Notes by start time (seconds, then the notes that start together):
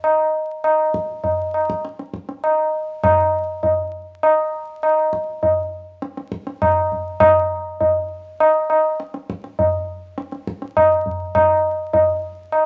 0.04 tabla na
0.64 tabla na
0.94 tabla ke
1.24 tabla tin, tabla ge
1.54 tabla na
1.70 tabla ke
1.85 tabla te
1.99 tabla te
2.14 tabla ke
2.29 tabla te
2.44 tabla na
3.03 tabla na, tabla ge
3.63 tabla tin, tabla ge
4.23 tabla na
4.83 tabla na
5.13 tabla ke
5.43 tabla tin, tabla ge
6.02 tabla te
6.17 tabla te
6.32 tabla ke
6.47 tabla te
6.62 tabla na, tabla ge
6.92 tabla ge
7.20 tabla na, tabla ge
7.81 tabla tin, tabla ge
8.40 tabla na
8.70 tabla na
9.00 tabla te
9.14 tabla te
9.30 tabla ke
9.44 tabla te
9.59 tabla tin, tabla ge
10.18 tabla te
10.32 tabla te
10.47 tabla ke
10.62 tabla te
10.77 tabla na, tabla ge
11.06 tabla ge
11.35 tabla na, tabla ge
11.93 tabla tin, tabla ge
12.52 tabla na